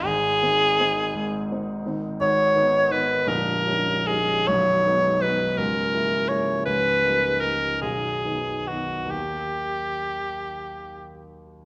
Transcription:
X:1
M:6/8
L:1/8
Q:3/8=53
K:Cphr
V:1 name="Cor anglais"
A4 z2 | [K:G#m] c2 B A2 G | c2 B A2 c | B2 A G2 F |
=G4- G z |]
V:2 name="Grand piano"
[A,,,A,,] [E,CE] [E,CE] [A,,,A,,] [E,CE] [E,CE] | [K:G#m] [G,,,G,,] [D,B,D] [D,B,D] [A,,,,A,,,] [=G,CD] [G,CD] | [B,,,,B,,,] [G,B,D] [G,B,D] [C,,,C,,] [G,A,E] [G,A,E] | [C,,,C,,] [=G,A,D] [G,A,D] [B,,,,B,,,] [D,B,D] [D,B,D] |
[D,,D,A,D]6 |]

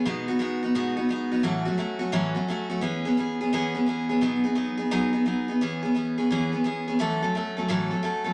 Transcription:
X:1
M:4/4
L:1/8
Q:"Swing" 1/4=173
K:E
V:1 name="Steel-string acoustic guitar"
[B,,G,B,DF] [B,DF] [G,B,DF] [B,DF] [B,,G,B,DF] [B,DF] [G,B,DF] [B,DF] | [A,,E,F,A,CF] [F,A,CF] [F,A,CF] [F,A,CF] [A,,E,F,A,CF] [F,A,CF] [F,A,CF] [F,A,CF] | [E,B,CG] [B,CG] [E,B,CG] [B,CG] [E,B,CG] [B,CG] [E,B,CG] [B,CG] | [B,,F,B,DG] [B,DG] [F,B,DG] [B,DG] [B,,F,B,DG] [B,D] [F,B,DG] [B,DG] |
[E,B,CG] [B,CG] [E,B,CG] [B,CG] [E,B,CG] [B,CG] [E,B,CG] [B,CG] | [A,,E,F,A,CA] [F,A,CA] [F,A,CA] [F,A,CA] [A,,E,F,A,CA] [F,A,CA] [F,A,CA] [F,A,CA] |]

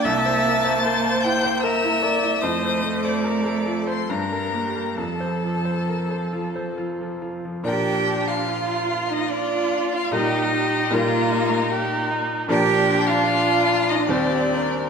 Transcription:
X:1
M:3/4
L:1/16
Q:1/4=73
K:Bb
V:1 name="Violin"
a'6 g'2 =e'4 | e'3 d'4 c' b4 | a8 z4 | g3 f4 e d3 f |
e4 B6 z2 | g3 f4 e d4 |]
V:2 name="Viola"
=e4 c4 B2 d2 | c4 B2 A2 B2 G2 | A8- A2 z2 | D4 F4 F4 |
E4 F4 E4 | D8 C4 |]
V:3 name="Violin"
a6 g2 =e4 | e3 d4 c B4 | A8 z4 | D4 F8 |
G2 G2 F2 E2 G2 E2 | D4 F4 G2 B2 |]
V:4 name="Grand piano"
C,, c B, c B c =E c B E B E | F,, c A, c B c F c G,, B B, B | F,, c F, c B c F c F F, F F, | [B,,F,DB]12 |
[B,,G,EB]4 [B,,G,EB]8 | [B,,F,DB]8 [E,,G,Cc]4 |]
V:5 name="Cello"
B,12 | A,8 G,4 | F,8- F,3 z | G3 F4 E D3 F |
E4 B,6 z2 | G3 F4 E D4 |]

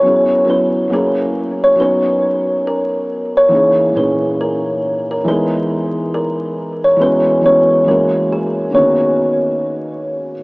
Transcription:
X:1
M:4/4
L:1/16
Q:"Swing 16ths" 1/4=69
K:F#mix
V:1 name="Kalimba"
c2 B2 A3 c B4 A3 c- | c2 B2 A3 A B4 A3 c | B2 c2 A2 G2 c6 z2 |]
V:2 name="Felt piano"
[F,B,CEG]2 [F,B,CEF]2 [F,A,CEG]4 [F,B,CDc]6- [F,B,CDc] z | [E,A,CDG]2 [A,,E,CDG]6 [E,G,B,DG]6- [E,G,B,DG] z | [E,G,B,CF]2 [E,G,B,CF]2 [E,G,A,CF]4 [=D,^D,A,B,CF]6- [=D,^D,A,B,CF] z |]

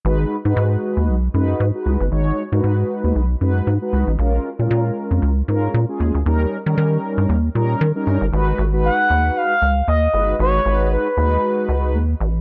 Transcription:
X:1
M:4/4
L:1/16
Q:"Swing 16ths" 1/4=116
K:G#dor
V:1 name="Analog synth lead"
z16 | z16 | z16 | z16 |
z4 f4 e4 d4 | c4 B8- B2 z2 |]
V:2 name="Analog polysynth"
[G,DFB]2 z [G,DFB]4- [G,DFB] z2 [G,DFB]2 z [G,DFB]2 z | [G,DFc]2 z [G,DFAB]4- [G,DFAB] z2 [G,DFB]2 z [G,DFB]2 z | [G,CEA]2 z [G,CEA]4- [G,CEA] z2 [G,CEA]2 z [G,CEG]2 z | [=G,CDA]2 z [G,CDA]4- [G,CDA] z2 [G,CDA]2 z [G,CDA]2 z |
[G,DFB]2 z [G,DFB]6 z4 z [G,DFB]2 | [G,DFB]2 [G,DFB]3 z [G,DFB]6 z4 |]
V:3 name="Analog synth bass" clef=bass
G,,,2 z G,, G,,2 z D,, B,,,2 F,,2 G,, z C,, =G,,, | G,,,2 z G,, G,,2 z D,, B,,,2 F,,2 G,, z C,, =A,,, | A,,,2 z A,, A,,2 z E,, C,,2 G,,2 A,, z D,, =D,, | D,,2 z D, D,2 z =G,, D,,2 A,,2 D, z G,, =G,,, |
G,,,2 G,,,3 z D,,2 z2 C,,2 D,,2 =G,,,2 | G,,,2 G,,,3 z D,,2 z2 C,,2 D,,2 =A,,,2 |]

